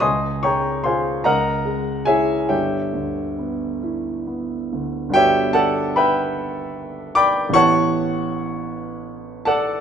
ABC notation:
X:1
M:6/8
L:1/8
Q:3/8=49
K:Glyd
V:1 name="Grand piano"
[^d^g=c'^d'] [^c=g^a^c'] [=c^e^g=c'] [^A_efa]2 [^G^c=eg] | [Gceg]3 z3 | [Gceg] [Adfa] [Begb]3 [dgbd'] | [cfac']4- [cfac'] [Adfa] |]
V:2 name="Grand piano"
C,, ^G, [^E^G] C,, G, =E | G,,, D,, B, E B, D,, | [G,,,B,DF]6 | [A,,,B,EG]6 |]